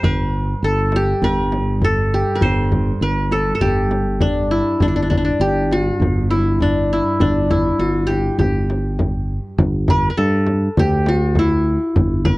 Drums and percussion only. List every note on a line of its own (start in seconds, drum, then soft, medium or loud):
0.03 frame drum medium
0.92 frame drum medium
1.22 frame drum medium
1.52 frame drum medium
1.82 frame drum medium
2.41 frame drum medium
2.72 frame drum medium
3.31 frame drum medium
3.61 frame drum medium
3.91 frame drum medium
4.21 frame drum medium
4.80 frame drum medium
5.11 frame drum medium
5.71 frame drum medium
6.02 frame drum medium
6.32 frame drum medium
6.60 frame drum medium
7.20 frame drum medium
7.50 frame drum medium
8.10 frame drum medium
8.40 frame drum medium
8.70 frame drum medium
8.99 frame drum medium
9.59 frame drum medium
9.88 frame drum medium
10.47 frame drum medium
10.77 frame drum medium
11.06 frame drum medium
11.35 frame drum medium
11.96 frame drum medium
12.25 frame drum medium